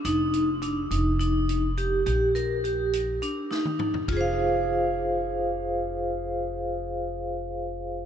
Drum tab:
RD |--------------|--------------|x-------------|--------------|
HH |x-x-x-x-x-x-x-|x-x-x-x-x-----|--------------|--------------|
SD |--------------|----------o---|--------------|--------------|
T1 |--------------|-----------o--|--------------|--------------|
T2 |--------------|------------o-|--------------|--------------|
FT |--------------|-------------o|--------------|--------------|
BD |--------------|--------------|o-------------|--------------|